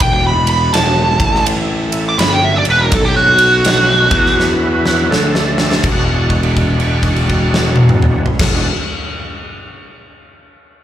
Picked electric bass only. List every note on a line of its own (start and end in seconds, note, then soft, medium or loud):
0.01 0.69 E1 medium
0.73 1.16 E1 medium
1.20 2.15 A1 loud
2.19 2.62 G1 medium
2.65 2.90 E1 medium
2.92 3.61 B1 loud
3.65 4.08 B1 medium
4.11 5.07 E2 medium
5.11 5.80 D2 medium
5.84 8.24 E1 loud
8.40 8.65 E1 medium